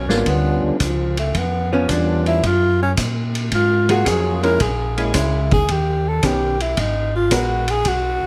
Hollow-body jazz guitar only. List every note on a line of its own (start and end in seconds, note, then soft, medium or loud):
0.00 0.23 F#3 medium
0.00 0.23 B3 medium
0.00 0.23 C#4 medium
1.73 1.88 F3 medium
1.73 1.88 B3 medium
1.73 1.88 C#4 medium
3.89 4.40 F#3 medium
3.89 4.40 A#3 medium
3.89 4.40 F4 medium
3.89 4.40 G#4 medium
4.43 4.58 G#3 medium
4.43 4.59 C#4 medium
4.43 4.59 E4 medium
5.14 5.48 G#3 medium
5.14 5.48 C#4 medium
5.14 5.49 E4 medium
6.23 6.57 D#3 medium
6.23 6.57 B3 medium
6.23 6.57 C#4 medium
6.23 6.57 G4 medium
7.31 7.65 G#3 medium
7.31 7.65 B3 medium
7.31 7.66 F#4 medium
7.31 7.66 A#4 medium